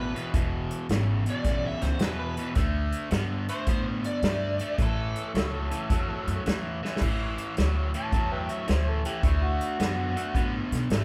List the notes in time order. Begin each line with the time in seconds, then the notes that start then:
Already playing: A1 E2 B2
0.01 B4
0.15 E2 B2, closed hi-hat
0.34 E1 E2 B2, kick, closed hi-hat
0.71 closed hi-hat
0.89 G#1 E2 C#3, snare, closed hi-hat
1.26 E2 B2, closed hi-hat
1.30 D5
1.44 B1 E2 C#3, kick, snare, closed hi-hat
1.66 E5
1.82 C#2 C5, snare, closed hi-hat
1.99 E2 B2 B4, snare, closed hi-hat
2.19 B4
2.37 E2 B2, closed hi-hat
2.55 D2 D3 A3, kick, snare, closed hi-hat
2.92 closed hi-hat
3.11 G2 D3 B3, snare, closed hi-hat
3.48 D3 A3 C5, closed hi-hat
3.67 A2 D3 B3, kick, closed hi-hat
4.04 D5, closed hi-hat
4.22 G2 D3 A3, snare, closed hi-hat
4.59 D3 A3, closed hi-hat
4.78 A1 A2 E3, kick, closed hi-hat
4.83 A4
5.16 closed hi-hat
5.34 C#2 A2 F#3, snare, closed hi-hat
5.70 A2 E3, closed hi-hat
5.90 E2 A2 F#3, kick, closed hi-hat
6.27 F#2, closed hi-hat
6.46 E2 A2 E3, snare, closed hi-hat
6.83 A2 E3, snare
6.96 snare
7.01 A1 A2 E3, kick, crash
7.38 closed hi-hat
7.57 D2 A2 F#3, snare, closed hi-hat
7.94 A2 E3 A5, closed hi-hat
8.12 E2 A2 F#3, kick, closed hi-hat
8.32 B4 E5 G5
8.49 E5, closed hi-hat
8.68 D2 A2 E3 C5, snare, closed hi-hat
8.89 A4
9.05 A2 E3 G4, closed hi-hat
9.23 D2 D3 A3 E4, kick, closed hi-hat
9.44 F#4
9.61 closed hi-hat
9.79 F#2 D3 B3, snare, closed hi-hat
10.16 D3 A3, closed hi-hat
10.35 A2 D3 B3, kick, closed hi-hat
10.72 B2, snare, closed hi-hat
10.90 G#1 D3 A3, snare, closed hi-hat